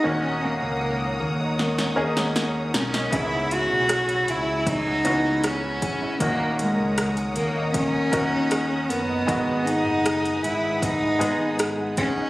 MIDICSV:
0, 0, Header, 1, 7, 480
1, 0, Start_track
1, 0, Tempo, 769231
1, 32, Time_signature, 4, 2, 24, 8
1, 7674, End_track
2, 0, Start_track
2, 0, Title_t, "String section"
2, 0, Program_c, 0, 48
2, 0, Note_on_c, 0, 78, 53
2, 0, Note_on_c, 0, 87, 67
2, 33, Note_on_c, 0, 82, 56
2, 35, Note_on_c, 0, 73, 59
2, 1929, Note_off_c, 0, 78, 0
2, 1929, Note_off_c, 0, 87, 0
2, 1933, Note_off_c, 0, 82, 0
2, 1936, Note_on_c, 0, 88, 63
2, 1938, Note_on_c, 0, 80, 50
2, 1941, Note_on_c, 0, 83, 52
2, 3844, Note_off_c, 0, 88, 0
2, 3846, Note_off_c, 0, 80, 0
2, 3847, Note_off_c, 0, 83, 0
2, 3849, Note_off_c, 0, 73, 0
2, 3872, Note_on_c, 0, 78, 57
2, 3873, Note_on_c, 0, 87, 69
2, 3876, Note_on_c, 0, 73, 62
2, 3876, Note_on_c, 0, 82, 53
2, 5775, Note_off_c, 0, 73, 0
2, 5775, Note_off_c, 0, 82, 0
2, 5792, Note_on_c, 0, 71, 65
2, 5796, Note_on_c, 0, 80, 56
2, 7674, Note_off_c, 0, 71, 0
2, 7674, Note_off_c, 0, 78, 0
2, 7674, Note_off_c, 0, 80, 0
2, 7674, Note_off_c, 0, 87, 0
2, 7674, End_track
3, 0, Start_track
3, 0, Title_t, "Cello"
3, 0, Program_c, 1, 42
3, 40, Note_on_c, 1, 61, 79
3, 278, Note_on_c, 1, 58, 70
3, 288, Note_off_c, 1, 61, 0
3, 755, Note_off_c, 1, 58, 0
3, 1727, Note_on_c, 1, 61, 74
3, 1957, Note_on_c, 1, 64, 88
3, 1967, Note_off_c, 1, 61, 0
3, 2202, Note_on_c, 1, 66, 95
3, 2211, Note_off_c, 1, 64, 0
3, 2685, Note_on_c, 1, 64, 81
3, 2695, Note_off_c, 1, 66, 0
3, 2928, Note_on_c, 1, 63, 94
3, 2938, Note_off_c, 1, 64, 0
3, 3407, Note_on_c, 1, 61, 86
3, 3417, Note_off_c, 1, 63, 0
3, 3880, Note_off_c, 1, 61, 0
3, 3886, Note_on_c, 1, 58, 81
3, 4103, Note_off_c, 1, 58, 0
3, 4127, Note_on_c, 1, 56, 81
3, 4574, Note_off_c, 1, 56, 0
3, 4597, Note_on_c, 1, 58, 70
3, 4818, Note_off_c, 1, 58, 0
3, 4835, Note_on_c, 1, 61, 91
3, 5553, Note_on_c, 1, 59, 83
3, 5562, Note_off_c, 1, 61, 0
3, 6030, Note_on_c, 1, 63, 93
3, 6040, Note_off_c, 1, 59, 0
3, 6515, Note_on_c, 1, 64, 77
3, 6524, Note_off_c, 1, 63, 0
3, 6762, Note_on_c, 1, 63, 81
3, 6771, Note_off_c, 1, 64, 0
3, 7237, Note_off_c, 1, 63, 0
3, 7475, Note_on_c, 1, 61, 99
3, 7674, Note_off_c, 1, 61, 0
3, 7674, End_track
4, 0, Start_track
4, 0, Title_t, "Grand piano"
4, 0, Program_c, 2, 0
4, 0, Control_c, 2, 64, 127
4, 22, Note_on_c, 2, 58, 57
4, 25, Note_on_c, 2, 61, 53
4, 27, Note_on_c, 2, 63, 54
4, 28, Note_on_c, 2, 46, 50
4, 34, Note_on_c, 2, 66, 60
4, 40, Control_c, 2, 64, 0
4, 150, Control_c, 2, 64, 127
4, 725, Note_off_c, 2, 46, 0
4, 939, Note_off_c, 2, 58, 0
4, 941, Note_off_c, 2, 61, 0
4, 942, Note_off_c, 2, 63, 0
4, 945, Note_off_c, 2, 66, 0
4, 1222, Note_on_c, 2, 58, 75
4, 1224, Note_on_c, 2, 61, 65
4, 1228, Note_on_c, 2, 63, 66
4, 1232, Note_on_c, 2, 68, 80
4, 1911, Note_off_c, 2, 58, 0
4, 1912, Note_off_c, 2, 61, 0
4, 1914, Note_off_c, 2, 63, 0
4, 1916, Note_off_c, 2, 68, 0
4, 1938, Note_on_c, 2, 59, 56
4, 1944, Note_on_c, 2, 61, 51
4, 1946, Note_on_c, 2, 44, 50
4, 1946, Note_on_c, 2, 64, 56
4, 1952, Note_on_c, 2, 68, 65
4, 1960, Control_c, 2, 64, 0
4, 2052, Control_c, 2, 64, 127
4, 2644, Note_off_c, 2, 44, 0
4, 2857, Note_off_c, 2, 59, 0
4, 2860, Note_off_c, 2, 61, 0
4, 2861, Note_off_c, 2, 64, 0
4, 2864, Note_off_c, 2, 68, 0
4, 3148, Note_on_c, 2, 59, 65
4, 3152, Note_on_c, 2, 61, 60
4, 3157, Note_on_c, 2, 52, 57
4, 3162, Note_on_c, 2, 66, 70
4, 3834, Note_off_c, 2, 59, 0
4, 3836, Note_off_c, 2, 61, 0
4, 3838, Note_off_c, 2, 52, 0
4, 3841, Note_off_c, 2, 66, 0
4, 3869, Note_on_c, 2, 58, 61
4, 3872, Note_on_c, 2, 61, 56
4, 3875, Note_on_c, 2, 46, 51
4, 3875, Note_on_c, 2, 63, 54
4, 3880, Control_c, 2, 64, 0
4, 3882, Note_on_c, 2, 66, 66
4, 3981, Control_c, 2, 64, 127
4, 4569, Note_off_c, 2, 46, 0
4, 4783, Note_off_c, 2, 58, 0
4, 4784, Note_off_c, 2, 61, 0
4, 4786, Note_off_c, 2, 63, 0
4, 4789, Note_off_c, 2, 66, 0
4, 5065, Note_on_c, 2, 70, 64
4, 5070, Note_on_c, 2, 61, 59
4, 5073, Note_on_c, 2, 63, 62
4, 5079, Note_on_c, 2, 66, 74
4, 5753, Note_off_c, 2, 70, 0
4, 5755, Note_off_c, 2, 61, 0
4, 5756, Note_off_c, 2, 63, 0
4, 5759, Note_off_c, 2, 66, 0
4, 5781, Note_on_c, 2, 56, 63
4, 5784, Note_on_c, 2, 51, 54
4, 5785, Note_on_c, 2, 59, 58
4, 5786, Note_on_c, 2, 44, 52
4, 5787, Note_on_c, 2, 75, 56
4, 5791, Note_on_c, 2, 66, 67
4, 5801, Control_c, 2, 64, 0
4, 5900, Control_c, 2, 64, 127
4, 6483, Note_off_c, 2, 51, 0
4, 6484, Note_off_c, 2, 44, 0
4, 6698, Note_off_c, 2, 56, 0
4, 6701, Note_off_c, 2, 59, 0
4, 6701, Note_off_c, 2, 75, 0
4, 6703, Note_off_c, 2, 66, 0
4, 6982, Note_on_c, 2, 56, 62
4, 6989, Note_on_c, 2, 59, 63
4, 6992, Note_on_c, 2, 63, 63
4, 6993, Note_on_c, 2, 68, 76
4, 7671, Note_off_c, 2, 56, 0
4, 7674, Note_off_c, 2, 59, 0
4, 7674, Note_off_c, 2, 63, 0
4, 7674, Note_off_c, 2, 68, 0
4, 7674, End_track
5, 0, Start_track
5, 0, Title_t, "Nylon-string guitar"
5, 0, Program_c, 3, 24
5, 0, Note_on_c, 3, 44, 68
5, 0, Note_on_c, 3, 59, 48
5, 0, Note_on_c, 3, 63, 47
5, 0, Note_on_c, 3, 68, 51
5, 36, Note_on_c, 3, 51, 61
5, 81, Note_off_c, 3, 44, 0
5, 82, Note_off_c, 3, 59, 0
5, 82, Note_off_c, 3, 68, 0
5, 157, Note_on_c, 3, 61, 49
5, 176, Note_off_c, 3, 63, 0
5, 273, Note_on_c, 3, 70, 51
5, 386, Note_off_c, 3, 61, 0
5, 389, Note_on_c, 3, 61, 44
5, 499, Note_off_c, 3, 70, 0
5, 507, Note_on_c, 3, 70, 50
5, 627, Note_off_c, 3, 61, 0
5, 630, Note_on_c, 3, 61, 43
5, 741, Note_off_c, 3, 70, 0
5, 748, Note_on_c, 3, 70, 50
5, 872, Note_on_c, 3, 63, 43
5, 982, Note_off_c, 3, 51, 0
5, 990, Note_on_c, 3, 51, 64
5, 1107, Note_off_c, 3, 61, 0
5, 1110, Note_on_c, 3, 61, 47
5, 1223, Note_off_c, 3, 70, 0
5, 1230, Note_on_c, 3, 70, 54
5, 1347, Note_off_c, 3, 61, 0
5, 1349, Note_on_c, 3, 61, 46
5, 1463, Note_off_c, 3, 70, 0
5, 1471, Note_on_c, 3, 70, 54
5, 1588, Note_off_c, 3, 61, 0
5, 1591, Note_on_c, 3, 61, 46
5, 1703, Note_off_c, 3, 70, 0
5, 1711, Note_on_c, 3, 70, 50
5, 1821, Note_off_c, 3, 63, 0
5, 1829, Note_on_c, 3, 63, 46
5, 1948, Note_off_c, 3, 51, 0
5, 1950, Note_on_c, 3, 49, 57
5, 1998, Note_off_c, 3, 63, 0
5, 1999, Note_off_c, 3, 70, 0
5, 2070, Note_off_c, 3, 61, 0
5, 2073, Note_on_c, 3, 59, 51
5, 2194, Note_on_c, 3, 68, 54
5, 2306, Note_off_c, 3, 59, 0
5, 2313, Note_on_c, 3, 59, 46
5, 2419, Note_off_c, 3, 68, 0
5, 2426, Note_on_c, 3, 68, 56
5, 2540, Note_off_c, 3, 59, 0
5, 2547, Note_on_c, 3, 59, 47
5, 2666, Note_off_c, 3, 68, 0
5, 2673, Note_on_c, 3, 68, 50
5, 2911, Note_off_c, 3, 49, 0
5, 2918, Note_on_c, 3, 49, 70
5, 3028, Note_off_c, 3, 59, 0
5, 3036, Note_on_c, 3, 59, 50
5, 3148, Note_off_c, 3, 68, 0
5, 3155, Note_on_c, 3, 68, 50
5, 3269, Note_off_c, 3, 59, 0
5, 3276, Note_on_c, 3, 59, 48
5, 3389, Note_off_c, 3, 68, 0
5, 3397, Note_on_c, 3, 68, 58
5, 3508, Note_off_c, 3, 59, 0
5, 3516, Note_on_c, 3, 59, 49
5, 3625, Note_off_c, 3, 68, 0
5, 3632, Note_on_c, 3, 68, 55
5, 3755, Note_on_c, 3, 64, 49
5, 3872, Note_off_c, 3, 49, 0
5, 3875, Note_on_c, 3, 51, 65
5, 3920, Note_off_c, 3, 68, 0
5, 3922, Note_off_c, 3, 59, 0
5, 3922, Note_off_c, 3, 64, 0
5, 3996, Note_on_c, 3, 61, 52
5, 4114, Note_on_c, 3, 70, 53
5, 4225, Note_off_c, 3, 61, 0
5, 4232, Note_on_c, 3, 61, 49
5, 4348, Note_off_c, 3, 70, 0
5, 4356, Note_on_c, 3, 70, 55
5, 4466, Note_off_c, 3, 61, 0
5, 4473, Note_on_c, 3, 61, 47
5, 4590, Note_off_c, 3, 70, 0
5, 4598, Note_on_c, 3, 70, 52
5, 4716, Note_on_c, 3, 63, 51
5, 4836, Note_off_c, 3, 51, 0
5, 4838, Note_on_c, 3, 51, 72
5, 4947, Note_off_c, 3, 61, 0
5, 4954, Note_on_c, 3, 61, 49
5, 5068, Note_off_c, 3, 70, 0
5, 5076, Note_on_c, 3, 70, 57
5, 5186, Note_off_c, 3, 61, 0
5, 5193, Note_on_c, 3, 61, 47
5, 5306, Note_off_c, 3, 70, 0
5, 5313, Note_on_c, 3, 70, 58
5, 5420, Note_off_c, 3, 61, 0
5, 5428, Note_on_c, 3, 61, 53
5, 5546, Note_off_c, 3, 70, 0
5, 5554, Note_on_c, 3, 70, 59
5, 5673, Note_off_c, 3, 63, 0
5, 5675, Note_on_c, 3, 63, 53
5, 5796, Note_on_c, 3, 44, 67
5, 5838, Note_off_c, 3, 61, 0
5, 5841, Note_off_c, 3, 70, 0
5, 5912, Note_on_c, 3, 59, 54
5, 6029, Note_on_c, 3, 68, 59
5, 6143, Note_off_c, 3, 59, 0
5, 6150, Note_on_c, 3, 59, 50
5, 6263, Note_off_c, 3, 68, 0
5, 6270, Note_on_c, 3, 68, 58
5, 6385, Note_off_c, 3, 59, 0
5, 6392, Note_on_c, 3, 59, 49
5, 6503, Note_off_c, 3, 68, 0
5, 6510, Note_on_c, 3, 68, 56
5, 6633, Note_off_c, 3, 63, 0
5, 6636, Note_on_c, 3, 63, 47
5, 6747, Note_off_c, 3, 44, 0
5, 6755, Note_on_c, 3, 44, 78
5, 6860, Note_off_c, 3, 59, 0
5, 6868, Note_on_c, 3, 59, 52
5, 6986, Note_off_c, 3, 68, 0
5, 6993, Note_on_c, 3, 68, 60
5, 7022, Note_off_c, 3, 51, 0
5, 7110, Note_off_c, 3, 59, 0
5, 7120, Note_on_c, 3, 59, 52
5, 7227, Note_off_c, 3, 68, 0
5, 7235, Note_on_c, 3, 68, 55
5, 7342, Note_off_c, 3, 59, 0
5, 7350, Note_on_c, 3, 59, 55
5, 7466, Note_off_c, 3, 68, 0
5, 7474, Note_on_c, 3, 68, 55
5, 7584, Note_off_c, 3, 63, 0
5, 7592, Note_on_c, 3, 63, 48
5, 7674, Note_off_c, 3, 44, 0
5, 7674, Note_off_c, 3, 59, 0
5, 7674, Note_off_c, 3, 63, 0
5, 7674, Note_off_c, 3, 68, 0
5, 7674, End_track
6, 0, Start_track
6, 0, Title_t, "Fretless electric bass"
6, 0, Program_c, 4, 35
6, 30, Note_on_c, 4, 39, 79
6, 366, Note_off_c, 4, 39, 0
6, 389, Note_on_c, 4, 37, 70
6, 725, Note_off_c, 4, 37, 0
6, 751, Note_on_c, 4, 39, 71
6, 1207, Note_off_c, 4, 39, 0
6, 1231, Note_on_c, 4, 39, 75
6, 1687, Note_off_c, 4, 39, 0
6, 1708, Note_on_c, 4, 35, 69
6, 1933, Note_off_c, 4, 35, 0
6, 1951, Note_on_c, 4, 37, 88
6, 2286, Note_off_c, 4, 37, 0
6, 2312, Note_on_c, 4, 35, 76
6, 2647, Note_off_c, 4, 35, 0
6, 2673, Note_on_c, 4, 37, 75
6, 3127, Note_off_c, 4, 37, 0
6, 3155, Note_on_c, 4, 37, 83
6, 3609, Note_off_c, 4, 37, 0
6, 3873, Note_on_c, 4, 39, 83
6, 4207, Note_off_c, 4, 39, 0
6, 4232, Note_on_c, 4, 37, 66
6, 4567, Note_off_c, 4, 37, 0
6, 4592, Note_on_c, 4, 39, 76
6, 5047, Note_off_c, 4, 39, 0
6, 5074, Note_on_c, 4, 39, 91
6, 5528, Note_off_c, 4, 39, 0
6, 5552, Note_on_c, 4, 30, 73
6, 5775, Note_off_c, 4, 30, 0
6, 5794, Note_on_c, 4, 32, 92
6, 6128, Note_off_c, 4, 32, 0
6, 6152, Note_on_c, 4, 30, 72
6, 6487, Note_off_c, 4, 30, 0
6, 6509, Note_on_c, 4, 32, 79
6, 6965, Note_off_c, 4, 32, 0
6, 6990, Note_on_c, 4, 32, 88
6, 7446, Note_off_c, 4, 32, 0
6, 7674, End_track
7, 0, Start_track
7, 0, Title_t, "Drums"
7, 994, Note_on_c, 9, 38, 42
7, 1057, Note_off_c, 9, 38, 0
7, 1114, Note_on_c, 9, 38, 41
7, 1176, Note_off_c, 9, 38, 0
7, 1352, Note_on_c, 9, 38, 54
7, 1415, Note_off_c, 9, 38, 0
7, 1471, Note_on_c, 9, 38, 72
7, 1534, Note_off_c, 9, 38, 0
7, 1711, Note_on_c, 9, 38, 78
7, 1773, Note_off_c, 9, 38, 0
7, 1834, Note_on_c, 9, 38, 68
7, 1897, Note_off_c, 9, 38, 0
7, 1950, Note_on_c, 9, 36, 79
7, 1951, Note_on_c, 9, 42, 67
7, 2012, Note_off_c, 9, 36, 0
7, 2014, Note_off_c, 9, 42, 0
7, 2192, Note_on_c, 9, 42, 57
7, 2254, Note_off_c, 9, 42, 0
7, 2428, Note_on_c, 9, 42, 73
7, 2430, Note_on_c, 9, 37, 84
7, 2491, Note_off_c, 9, 42, 0
7, 2492, Note_off_c, 9, 37, 0
7, 2551, Note_on_c, 9, 42, 43
7, 2613, Note_off_c, 9, 42, 0
7, 2672, Note_on_c, 9, 42, 50
7, 2734, Note_off_c, 9, 42, 0
7, 2911, Note_on_c, 9, 36, 69
7, 2913, Note_on_c, 9, 42, 60
7, 2973, Note_off_c, 9, 36, 0
7, 2975, Note_off_c, 9, 42, 0
7, 3150, Note_on_c, 9, 42, 60
7, 3213, Note_off_c, 9, 42, 0
7, 3392, Note_on_c, 9, 42, 76
7, 3395, Note_on_c, 9, 37, 91
7, 3454, Note_off_c, 9, 42, 0
7, 3458, Note_off_c, 9, 37, 0
7, 3633, Note_on_c, 9, 36, 74
7, 3633, Note_on_c, 9, 42, 60
7, 3695, Note_off_c, 9, 42, 0
7, 3696, Note_off_c, 9, 36, 0
7, 3871, Note_on_c, 9, 42, 67
7, 3872, Note_on_c, 9, 36, 81
7, 3934, Note_off_c, 9, 42, 0
7, 3935, Note_off_c, 9, 36, 0
7, 4113, Note_on_c, 9, 42, 61
7, 4175, Note_off_c, 9, 42, 0
7, 4354, Note_on_c, 9, 42, 81
7, 4355, Note_on_c, 9, 37, 94
7, 4416, Note_off_c, 9, 42, 0
7, 4417, Note_off_c, 9, 37, 0
7, 4474, Note_on_c, 9, 42, 42
7, 4536, Note_off_c, 9, 42, 0
7, 4591, Note_on_c, 9, 42, 52
7, 4653, Note_off_c, 9, 42, 0
7, 4831, Note_on_c, 9, 42, 61
7, 4832, Note_on_c, 9, 36, 72
7, 4894, Note_off_c, 9, 36, 0
7, 4894, Note_off_c, 9, 42, 0
7, 5072, Note_on_c, 9, 36, 77
7, 5072, Note_on_c, 9, 42, 66
7, 5134, Note_off_c, 9, 42, 0
7, 5135, Note_off_c, 9, 36, 0
7, 5310, Note_on_c, 9, 42, 80
7, 5314, Note_on_c, 9, 37, 97
7, 5373, Note_off_c, 9, 42, 0
7, 5376, Note_off_c, 9, 37, 0
7, 5555, Note_on_c, 9, 42, 61
7, 5618, Note_off_c, 9, 42, 0
7, 5794, Note_on_c, 9, 36, 88
7, 5796, Note_on_c, 9, 42, 68
7, 5856, Note_off_c, 9, 36, 0
7, 5858, Note_off_c, 9, 42, 0
7, 6036, Note_on_c, 9, 42, 59
7, 6098, Note_off_c, 9, 42, 0
7, 6275, Note_on_c, 9, 42, 76
7, 6276, Note_on_c, 9, 37, 91
7, 6337, Note_off_c, 9, 42, 0
7, 6339, Note_off_c, 9, 37, 0
7, 6399, Note_on_c, 9, 42, 42
7, 6461, Note_off_c, 9, 42, 0
7, 6516, Note_on_c, 9, 42, 55
7, 6579, Note_off_c, 9, 42, 0
7, 6753, Note_on_c, 9, 36, 77
7, 6756, Note_on_c, 9, 42, 67
7, 6816, Note_off_c, 9, 36, 0
7, 6819, Note_off_c, 9, 42, 0
7, 6997, Note_on_c, 9, 42, 63
7, 7059, Note_off_c, 9, 42, 0
7, 7234, Note_on_c, 9, 42, 81
7, 7237, Note_on_c, 9, 37, 101
7, 7296, Note_off_c, 9, 42, 0
7, 7299, Note_off_c, 9, 37, 0
7, 7471, Note_on_c, 9, 42, 66
7, 7474, Note_on_c, 9, 36, 79
7, 7533, Note_off_c, 9, 42, 0
7, 7536, Note_off_c, 9, 36, 0
7, 7674, End_track
0, 0, End_of_file